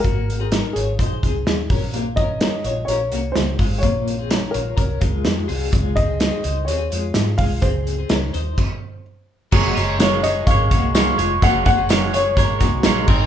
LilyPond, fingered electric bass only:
\new Staff \with { instrumentName = "Fingered electric bass" } { \clef bass \time 4/4 \key ges \lydian \tempo 4 = 127 aes,,4~ aes,,16 r16 aes,,8 bes,,8 c,8 ees,8 bes,,8~ | bes,,4~ bes,,16 r16 bes,,8 bes,,8 c,8 des,8 aes,,8 | bes,,4~ bes,,16 r16 bes,,8 c,8 des,8 f,8 c,8 | des,4~ des,16 r16 des,8 ees,8 f,8 aes,8 c,8 |
des,4 des,8 ees,8 r2 | ges,,8 ges,,4. aes,,8 c,4 f,,8 | ges,,8 ges,,4. aes,,8 c,8 bes,,8 aes,,8 | }